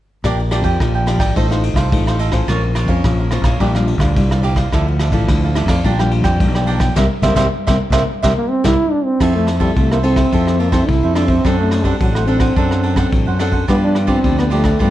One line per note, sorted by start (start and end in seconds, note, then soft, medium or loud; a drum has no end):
0.24 0.60 A#1 medium
0.24 0.77 A#3 medium
0.24 0.37 D4 medium
0.24 0.41 F4 soft
0.24 0.41 G4 medium
0.24 0.38 A#4 medium
0.24 0.41 D5 medium
0.24 0.38 D5 medium
0.24 0.38 G5 medium
0.24 kick medium
0.24 cross-stick medium
0.24 ride soft
0.39 muted cavaquinho stroke soft
0.51 0.65 D4 medium
0.51 0.60 F4 medium
0.51 0.60 G4 medium
0.51 0.64 A#4 medium
0.51 0.61 D5 medium
0.51 0.63 D5 medium
0.51 0.63 G5 medium
0.51 cross-stick medium
0.51 ride soft
0.62 0.76 F2 medium
0.62 1.03 F4 medium
0.62 1.03 G4 medium
0.62 0.93 A#4 medium
0.62 1.03 D5 medium
0.62 0.92 D5 medium
0.62 0.92 G5 medium
0.62 kick medium
0.62 ride soft
0.80 1.16 A#1 medium
0.80 1.34 F3 medium
0.80 kick medium
0.80 cross-stick medium
0.80 ride soft
0.95 1.06 A#4 soft
0.95 1.06 D5 soft
0.95 1.07 G5 medium
1.06 1.20 D4 soft
1.06 1.33 F4 medium
1.06 1.34 G4 medium
1.06 1.20 A#4 soft
1.06 1.19 D5 medium
1.06 1.34 D5 medium
1.06 1.18 G5 medium
1.06 cross-stick medium
1.06 ride medium
1.18 1.31 G#1 medium
1.18 1.35 A#4 medium
1.18 1.34 D5 medium
1.18 1.34 G5 medium
1.18 kick medium
1.18 cross-stick medium
1.18 ride medium
1.36 1.72 A1 medium
1.36 1.89 A3 medium
1.36 1.49 D#4 medium
1.36 1.46 D#4 medium
1.36 1.46 F4 medium
1.36 1.49 A4 medium
1.36 1.46 C5 medium
1.36 1.50 C5 medium
1.36 1.50 F5 medium
1.36 kick medium
1.36 ride medium
1.51 1.88 D#4 medium
1.51 1.88 F4 medium
1.51 1.63 A4 soft
1.51 1.89 C5 medium
1.51 1.63 C5 soft
1.51 1.63 F5 medium
1.51 cross-stick medium
1.63 muted cavaquinho stroke soft
1.63 ride soft
1.74 1.93 C2 medium
1.74 2.05 C5 medium
1.74 2.04 F5 medium
1.74 kick medium
1.74 cross-stick medium
1.74 ride medium
1.78 2.05 A4 medium
1.92 2.40 A1 medium
1.92 2.46 A3 medium
1.92 2.19 D#4 medium
1.92 2.19 F4 soft
1.92 2.19 C5 medium
1.92 kick medium
1.92 ride medium
2.07 2.19 A4 soft
2.07 2.19 C5 soft
2.07 2.20 F5 medium
2.07 cross-stick medium
2.19 2.33 D#4 medium
2.19 2.32 A4 medium
2.19 2.31 C5 medium
2.19 2.30 F5 medium
2.19 ride medium
2.31 2.71 C#4 medium
2.31 2.71 F4 medium
2.31 2.47 A4 soft
2.31 2.46 C5 soft
2.31 2.71 C5 medium
2.31 2.46 F5 soft
2.31 kick medium
2.31 cross-stick medium
2.31 ride soft
2.48 2.84 A#1 medium
2.48 3.02 A#3 medium
2.48 2.61 F4 medium
2.48 2.61 A#4 medium
2.48 2.62 C#5 medium
2.48 2.62 F5 medium
2.48 kick medium
2.48 cross-stick medium
2.48 ride soft
2.63 muted cavaquinho stroke soft
2.75 2.89 F4 medium
2.75 2.89 A#4 medium
2.75 2.88 C#5 medium
2.75 2.87 F5 medium
2.75 cross-stick medium
2.75 ride soft
2.86 3.00 F2 medium
2.86 3.27 C#4 medium
2.86 3.27 F4 medium
2.86 3.27 C5 medium
2.86 3.17 C#5 medium
2.86 3.16 F5 medium
2.86 kick medium
2.86 ride soft
2.90 3.17 A#4 medium
3.04 3.40 A#1 loud
3.04 3.58 F3 medium
3.04 kick medium
3.04 cross-stick medium
3.04 ride soft
3.19 3.31 A#4 soft
3.19 3.32 C#5 soft
3.19 3.32 F5 soft
3.31 3.50 C#4 medium
3.31 3.45 F4 soft
3.31 3.50 F4 medium
3.31 3.44 A#4 medium
3.31 3.50 C5 medium
3.31 3.44 C#5 soft
3.31 3.43 F5 medium
3.31 cross-stick medium
3.31 ride soft
3.42 3.56 A#1 medium
3.42 3.59 A#4 medium
3.42 3.59 C#5 medium
3.42 3.58 F5 medium
3.42 kick medium
3.42 cross-stick medium
3.42 ride soft
3.60 3.96 A#1 medium
3.60 4.14 A#2 medium
3.60 3.69 G3 medium
3.60 3.69 D4 medium
3.60 3.69 F4 medium
3.60 3.73 G4 medium
3.60 3.73 A#4 medium
3.60 3.74 D5 medium
3.60 3.73 F5 medium
3.60 kick medium
3.60 ride soft
3.75 4.13 G3 medium
3.75 4.13 D4 medium
3.75 4.13 F4 medium
3.75 3.86 A#4 soft
3.75 3.87 D5 soft
3.75 3.87 F5 soft
3.75 cross-stick medium
3.87 muted cavaquinho stroke soft
3.87 ride soft
3.98 4.17 D2 loud
3.98 4.29 A#4 medium
3.98 4.29 D5 medium
3.98 4.28 F5 medium
3.98 kick medium
3.98 cross-stick medium
3.98 ride medium
4.16 4.64 C2 medium
4.16 4.70 A#2 medium
4.16 4.53 G3 medium
4.16 4.53 D4 medium
4.16 4.53 F4 medium
4.16 kick medium
4.16 ride soft
4.31 4.42 A#4 soft
4.31 4.43 D5 soft
4.31 4.43 F5 soft
4.31 cross-stick medium
4.43 4.57 G4 medium
4.43 4.57 A#4 medium
4.43 4.56 D5 medium
4.43 4.55 F5 medium
4.43 ride soft
4.56 4.71 A#4 soft
4.56 4.71 D5 soft
4.56 4.70 F5 soft
4.56 kick medium
4.56 cross-stick medium
4.56 ride soft
4.72 5.08 D2 medium
4.72 5.26 D3 medium
4.72 5.10 F3 medium
4.72 5.10 A3 medium
4.72 4.86 E4 medium
4.72 5.11 E4 medium
4.72 4.86 A4 medium
4.72 4.86 D5 medium
4.72 4.86 F5 medium
4.72 kick medium
4.72 cross-stick medium
4.72 ride soft
4.88 muted cavaquinho stroke soft
4.99 5.13 E4 medium
4.99 5.13 A4 medium
4.99 5.13 D5 medium
4.99 5.11 F5 medium
4.99 cross-stick medium
4.99 ride soft
5.10 5.24 A1 medium
5.10 5.51 F3 medium
5.10 5.51 A3 medium
5.10 5.51 E4 medium
5.10 5.41 D5 medium
5.10 5.41 F5 medium
5.10 kick medium
5.10 ride soft
5.14 5.41 A4 medium
5.28 5.64 D2 medium
5.28 5.82 A2 medium
5.28 kick medium
5.28 cross-stick medium
5.28 ride soft
5.44 5.55 A4 soft
5.44 5.55 D5 soft
5.44 5.56 F5 medium
5.55 5.74 F3 soft
5.55 5.74 A3 medium
5.55 5.69 E4 medium
5.55 5.74 E4 medium
5.55 5.69 A4 medium
5.55 5.68 D5 soft
5.55 5.67 F5 medium
5.55 cross-stick medium
5.55 ride soft
5.66 5.80 F2 medium
5.66 5.83 D5 medium
5.66 5.83 F5 medium
5.66 kick medium
5.66 cross-stick medium
5.66 ride medium
5.70 5.83 A4 medium
5.84 6.20 A#1 loud
5.84 6.38 A#2 medium
5.84 5.93 G3 medium
5.84 5.97 D4 medium
5.84 5.93 D4 medium
5.84 5.93 F4 medium
5.84 5.98 A#4 medium
5.84 5.98 D5 medium
5.84 5.98 G5 medium
5.84 kick medium
5.84 ride soft
5.99 6.37 G3 medium
5.99 6.37 D4 medium
5.99 6.37 F4 medium
5.99 6.11 A#4 soft
5.99 6.11 D5 soft
5.99 6.12 G5 medium
5.99 cross-stick medium
6.11 muted cavaquinho stroke soft
6.11 ride medium
6.22 6.42 F2 loud
6.22 6.53 A#4 medium
6.22 6.53 D5 medium
6.22 6.52 G5 medium
6.22 kick medium
6.22 cross-stick medium
6.22 ride soft
6.40 6.88 B1 medium
6.40 6.94 F3 soft
6.40 6.77 G3 medium
6.40 6.77 D4 soft
6.40 6.77 F4 medium
6.40 kick medium
6.40 ride medium
6.55 6.66 A#4 soft
6.55 6.67 D5 soft
6.55 6.67 G5 medium
6.55 cross-stick medium
6.67 6.81 D4 medium
6.67 6.80 A#4 medium
6.67 6.79 D5 medium
6.67 6.78 G5 medium
6.67 ride medium
6.80 6.95 A#4 soft
6.80 6.95 D5 soft
6.80 6.94 G5 medium
6.80 kick medium
6.80 cross-stick medium
6.80 ride soft
6.96 7.07 C2 medium
6.96 7.05 G3 loud
6.96 7.05 A#3 medium
6.96 7.06 C4 medium
6.96 7.05 A#4 loud
6.96 7.05 C5 medium
6.96 7.05 E5 medium
6.96 kick medium
6.96 snare medium
7.22 7.33 C2 medium
7.22 7.33 G3 medium
7.22 7.33 A#3 medium
7.22 7.33 C4 medium
7.22 7.33 A#4 medium
7.22 7.33 C5 medium
7.22 7.32 E5 loud
7.22 kick medium
7.22 snare medium
7.34 7.46 C2 medium
7.34 7.46 G3 medium
7.34 7.46 A#3 loud
7.34 7.46 C4 loud
7.34 7.46 A#4 medium
7.34 7.46 C5 loud
7.34 7.46 E5 medium
7.34 kick medium
7.34 snare medium
7.67 7.78 C2 medium
7.67 7.76 G3 medium
7.67 7.76 A#3 medium
7.67 7.76 C4 medium
7.67 7.76 A#4 medium
7.67 7.76 C5 medium
7.67 7.76 E5 medium
7.67 kick medium
7.67 snare medium
7.90 8.03 C2 loud
7.90 8.02 G3 medium
7.90 8.02 A#3 loud
7.90 8.02 C4 medium
7.90 8.02 A#4 medium
7.90 8.02 C5 loud
7.90 8.02 E5 loud
7.90 kick medium
7.90 snare medium
8.23 8.34 C2 medium
8.23 8.32 G3 medium
8.23 8.32 A#3 medium
8.23 8.32 C4 medium
8.23 8.32 A#4 medium
8.23 8.32 C5 medium
8.23 8.32 E5 medium
8.23 kick medium
8.23 snare medium
8.37 8.51 A#3 medium
8.49 8.67 C4 medium
8.64 8.75 C2 medium
8.64 8.73 G3 medium
8.64 8.73 A#3 medium
8.64 8.73 C4 medium
8.64 8.93 E4 loud
8.64 8.73 A#4 medium
8.64 8.73 C5 medium
8.64 8.73 E5 medium
8.64 kick medium
8.64 snare medium
8.91 9.06 D4 loud
9.04 9.34 C4 medium
9.20 9.68 F2 loud
9.20 9.74 F3 medium
9.20 9.58 C4 medium
9.20 9.58 E4 medium
9.20 9.59 F4 medium
9.20 9.59 A4 medium
9.20 9.60 C5 medium
9.20 9.60 E5 medium
9.20 kick medium
9.20 cross-stick medium
9.20 crash medium
9.36 9.48 A3 medium
9.47 cross-stick medium
9.47 ride medium
9.60 9.78 G3 medium
9.60 9.99 C4 medium
9.60 9.99 E4 medium
9.60 9.70 F4 medium
9.60 9.70 A4 medium
9.60 9.99 A4 medium
9.60 9.71 C5 medium
9.60 9.71 E5 medium
9.60 kick medium
9.60 ride soft
9.76 10.24 C2 medium
9.76 10.30 C3 medium
9.76 9.91 A3 medium
9.76 9.89 F4 soft
9.76 9.90 A4 soft
9.76 9.90 C5 medium
9.76 9.90 E5 soft
9.76 kick medium
9.76 ride soft
9.91 9.98 A#3 medium
9.91 10.02 A4 soft
9.91 10.03 C5 soft
9.91 10.03 E5 soft
9.91 cross-stick medium
10.03 10.61 C4 medium
10.03 10.21 C4 medium
10.03 10.21 E4 medium
10.03 10.17 F4 medium
10.03 10.17 A4 medium
10.03 10.21 A4 medium
10.03 10.16 C5 medium
10.03 10.15 E5 medium
10.03 ride soft
10.16 10.31 A4 soft
10.16 10.31 C5 soft
10.16 10.30 E5 soft
10.16 kick medium
10.16 cross-stick medium
10.16 ride medium
10.32 10.80 F2 loud
10.32 10.86 F3 medium
10.32 10.59 C4 medium
10.32 10.59 E4 medium
10.32 10.58 F4 medium
10.32 10.59 A4 medium
10.32 10.60 A4 medium
10.32 10.59 C5 medium
10.32 10.60 E5 medium
10.32 kick medium
10.32 ride soft
10.47 cross-stick medium
10.59 10.71 A#3 medium
10.59 10.71 F4 medium
10.59 10.71 A4 soft
10.59 10.71 C5 soft
10.59 10.72 E5 medium
10.59 ride soft
10.72 10.90 C4 medium
10.72 11.11 C4 medium
10.72 11.11 E4 medium
10.72 10.82 F4 medium
10.72 10.83 A4 medium
10.72 11.11 A4 medium
10.72 10.83 C5 medium
10.72 10.83 E5 medium
10.72 kick medium
10.72 cross-stick medium
10.72 ride soft
10.88 11.01 C2 medium
10.88 11.42 C3 soft
10.88 11.16 E4 medium
10.88 kick medium
10.88 ride soft
11.03 11.39 F2 medium
11.03 11.14 A4 soft
11.03 11.15 C5 soft
11.03 11.16 E5 medium
11.15 11.33 C4 medium
11.15 11.29 D4 medium
11.15 11.33 E4 medium
11.15 11.29 F4 medium
11.15 11.29 A4 medium
11.15 11.33 A4 medium
11.15 11.28 C5 medium
11.15 11.27 E5 medium
11.15 cross-stick medium
11.15 ride medium
11.28 11.57 C4 medium
11.28 11.43 A4 soft
11.28 11.43 C5 soft
11.28 11.42 E5 medium
11.28 kick medium
11.28 ride soft
11.44 11.92 F#2 medium
11.44 11.98 F#3 medium
11.44 11.82 C4 medium
11.44 11.83 D4 medium
11.44 11.84 A4 medium
11.44 11.83 A4 medium
11.44 11.84 C5 medium
11.44 11.84 F#5 medium
11.44 kick medium
11.44 cross-stick medium
11.44 ride soft
11.60 11.85 A3 medium
11.71 cross-stick medium
11.71 ride soft
11.84 11.99 G3 medium
11.84 12.23 C4 medium
11.84 11.95 D4 medium
11.84 12.24 D4 medium
11.84 11.95 A4 medium
11.84 12.24 A4 medium
11.84 11.95 C5 medium
11.84 11.95 F#5 medium
11.84 kick medium
11.84 ride soft
12.00 12.48 A1 medium
12.00 12.16 F#3 medium
12.00 12.54 F#3 medium
12.00 12.14 D4 soft
12.00 12.14 A4 soft
12.00 12.14 C5 soft
12.00 12.14 F#5 soft
12.00 kick medium
12.00 ride soft
12.14 12.26 A3 medium
12.14 12.27 A4 soft
12.14 12.28 C5 soft
12.14 12.28 F#5 soft
12.14 cross-stick medium
12.27 13.36 C4 medium
12.27 12.52 C4 medium
12.27 12.41 D4 medium
12.27 12.52 D4 medium
12.27 12.40 A4 medium
12.27 12.52 A4 medium
12.27 12.40 C5 medium
12.27 12.39 F#5 medium
12.27 ride soft
12.40 12.55 A4 soft
12.40 12.55 C5 soft
12.40 12.54 F#5 medium
12.40 kick medium
12.40 cross-stick medium
12.40 ride medium
12.56 13.04 F#2 loud
12.56 13.10 F#3 medium
12.56 12.95 C4 medium
12.56 12.82 D4 medium
12.56 12.95 D4 medium
12.56 12.82 A4 medium
12.56 12.95 A4 medium
12.56 12.83 C5 medium
12.56 12.83 F#5 medium
12.56 kick medium
12.56 ride soft
12.71 cross-stick medium
12.83 12.95 D4 medium
12.83 12.95 A4 medium
12.83 12.96 C5 medium
12.83 12.96 F#5 medium
12.83 ride soft
12.96 13.35 C4 medium
12.96 13.06 D4 medium
12.96 13.35 D4 medium
12.96 13.07 A4 medium
12.96 13.35 A4 medium
12.96 13.07 C5 medium
12.96 13.07 F#5 medium
12.96 kick medium
12.96 cross-stick medium
12.96 ride soft
13.12 13.25 A1 medium
13.12 13.66 F#3 medium
13.12 kick medium
13.12 ride soft
13.27 13.63 F#2 medium
13.27 13.38 A4 soft
13.27 13.39 C5 soft
13.27 13.40 F#5 soft
13.39 13.64 C4 medium
13.39 13.53 D4 medium
13.39 13.64 D4 medium
13.39 13.52 A4 medium
13.39 13.64 A4 medium
13.39 13.51 C5 medium
13.39 13.50 F#5 medium
13.39 cross-stick medium
13.39 ride soft
13.51 13.67 A4 soft
13.51 13.66 C5 soft
13.51 13.66 F#5 soft
13.51 kick medium
13.51 ride soft
13.68 14.16 G2 loud
13.68 14.22 G2 medium
13.68 14.06 F3 medium
13.68 14.06 B3 medium
13.68 13.75 B3 medium
13.68 14.07 D4 medium
13.68 14.06 F4 medium
13.68 14.06 G4 medium
13.68 14.06 B4 medium
13.68 14.07 D5 medium
13.68 kick medium
13.68 cross-stick medium
13.68 ride soft
13.84 13.97 D4 medium
13.95 cross-stick medium
13.95 ride soft
14.07 14.47 F3 medium
14.07 14.47 B3 medium
14.07 14.35 C4 medium
14.07 14.47 D4 medium
14.07 14.18 F4 medium
14.07 14.18 G4 medium
14.07 14.18 B4 medium
14.07 14.18 D5 medium
14.07 kick medium
14.07 ride soft
14.24 14.72 D2 medium
14.24 14.78 D3 medium
14.24 14.37 F4 soft
14.24 14.37 G4 soft
14.24 14.37 B4 soft
14.24 14.37 D5 medium
14.24 kick medium
14.24 ride soft
14.38 14.45 B3 medium
14.38 14.50 G4 soft
14.38 14.50 B4 soft
14.38 14.51 D5 medium
14.38 cross-stick medium
14.50 14.69 F3 medium
14.50 14.90 A3 medium
14.50 14.69 B3 medium
14.50 14.69 D4 medium
14.50 14.64 F4 medium
14.50 14.64 G4 medium
14.50 14.63 B4 medium
14.50 14.63 D5 medium
14.50 ride soft
14.64 14.79 G4 soft
14.64 14.78 B4 soft
14.64 14.78 D5 medium
14.64 kick medium
14.64 cross-stick medium
14.64 ride soft
14.79 14.90 G2 loud
14.79 14.90 G2 medium
14.79 14.90 F3 medium
14.79 14.90 B3 soft
14.79 14.90 D4 medium
14.79 14.90 F4 medium
14.79 14.90 G4 medium
14.79 14.90 B4 medium
14.79 14.90 D5 medium
14.79 kick medium
14.79 ride soft